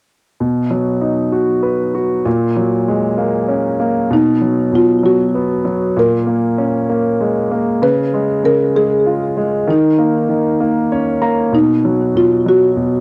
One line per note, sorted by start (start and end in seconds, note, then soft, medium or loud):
0.40 2.22 B2 soft
0.71 1.91 F#3 soft
1.01 2.22 D#4 soft
1.32 1.93 F#4 soft
1.63 2.23 B4 soft
1.95 2.25 F#4 soft
2.25 4.07 A#2 soft
2.56 3.77 F#3 soft
2.88 4.08 G#3 soft
3.18 3.78 A#3 soft
3.48 4.09 C#4 soft
3.80 4.10 A#3 soft
4.10 4.71 B2 soft
4.10 4.76 D#4 medium
4.41 5.02 F#3 soft
4.72 5.93 B2 soft
4.72 5.06 F4 medium
5.03 5.63 F#3 soft
5.03 5.94 F#4 medium
5.35 5.95 B3 soft
5.65 5.96 F#3 soft
5.96 7.78 A#2 soft
5.96 7.49 A#4 medium
6.27 6.88 A#3 soft
6.58 7.78 C#4 soft
6.90 7.50 A#3 soft
7.21 7.81 G#3 soft
7.51 7.81 A#3 soft
7.82 8.42 C#3 soft
7.82 8.40 B4 medium
8.14 8.74 G#3 soft
8.44 9.64 C#3 soft
8.44 8.77 A#4 medium
8.75 9.36 G#3 soft
8.75 9.71 G#4 medium
9.06 9.66 F4 soft
9.37 9.67 G#3 soft
9.68 10.27 D#3 soft
9.68 10.58 D#4 soft
9.99 10.59 A#3 soft
10.29 11.49 D#3 soft
10.60 11.20 A#3 soft
10.92 11.52 C#4 soft
10.92 11.21 C#5 soft
11.22 11.52 A#3 soft
11.22 11.51 A#5 soft
11.52 12.14 B2 soft
11.52 12.12 D#4 medium
11.85 12.45 F#3 soft
12.15 12.75 B2 soft
12.15 12.48 F4 medium
12.46 13.00 F#3 soft
12.46 13.00 F#4 medium
12.76 13.00 B2 soft